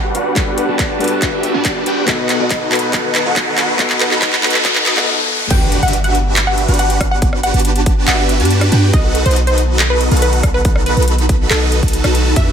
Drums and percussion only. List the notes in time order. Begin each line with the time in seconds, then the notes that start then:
0.15 closed hi-hat
0.36 kick, clap, closed hi-hat
0.58 closed hi-hat
0.79 kick, clap, closed hi-hat
1.00 closed hi-hat
1.04 closed hi-hat
1.08 closed hi-hat
1.22 kick, clap, closed hi-hat
1.43 closed hi-hat
1.65 kick, clap, closed hi-hat
1.86 closed hi-hat
2.08 kick, clap, closed hi-hat
2.29 clap, closed hi-hat
2.50 kick, clap, closed hi-hat
2.72 clap, closed hi-hat
2.75 closed hi-hat
2.79 closed hi-hat
2.93 kick, clap, closed hi-hat
3.15 clap, closed hi-hat
3.36 kick, clap, closed hi-hat
3.58 clap, closed hi-hat
3.79 kick, clap, closed hi-hat
3.90 clap
4.00 clap, closed hi-hat
4.11 clap
4.22 kick, clap, closed hi-hat
4.33 clap
4.43 clap, closed hi-hat
4.47 closed hi-hat
4.50 clap, closed hi-hat
4.65 kick, clap, closed hi-hat
4.75 clap
4.86 clap, closed hi-hat
4.97 clap
5.08 high tom
5.29 mid tom
5.40 mid tom
5.50 kick, closed hi-hat, crash
5.72 closed hi-hat
5.83 closed hi-hat
5.88 closed hi-hat
5.93 closed hi-hat
6.04 closed hi-hat
6.15 closed hi-hat
6.36 clap, closed hi-hat
6.58 closed hi-hat
6.68 closed hi-hat
6.74 closed hi-hat
6.79 closed hi-hat
6.90 closed hi-hat
7.01 kick, cross-stick, closed hi-hat
7.22 kick, closed hi-hat
7.33 cross-stick
7.43 closed hi-hat
7.54 closed hi-hat
7.59 closed hi-hat
7.65 closed hi-hat
7.76 closed hi-hat
7.86 kick, closed hi-hat
8.08 clap, closed hi-hat
8.29 closed hi-hat
8.40 closed hi-hat
8.45 closed hi-hat
8.51 closed hi-hat
8.61 cross-stick, closed hi-hat
8.72 closed hi-hat
8.93 kick, closed hi-hat
9.15 closed hi-hat
9.26 closed hi-hat
9.31 closed hi-hat
9.36 closed hi-hat
9.47 closed hi-hat
9.58 closed hi-hat
9.79 clap, closed hi-hat
10.01 closed hi-hat
10.11 closed hi-hat
10.17 closed hi-hat
10.22 closed hi-hat
10.33 closed hi-hat
10.43 kick, cross-stick, closed hi-hat
10.65 kick, closed hi-hat
10.76 cross-stick
10.86 closed hi-hat
10.97 closed hi-hat
11.02 closed hi-hat
11.08 closed hi-hat
11.19 closed hi-hat
11.29 kick, closed hi-hat
11.51 clap, closed hi-hat
11.72 closed hi-hat
11.83 kick, closed hi-hat
11.88 closed hi-hat
11.93 closed hi-hat
12.04 cross-stick, closed hi-hat
12.15 closed hi-hat
12.36 kick, closed hi-hat, ride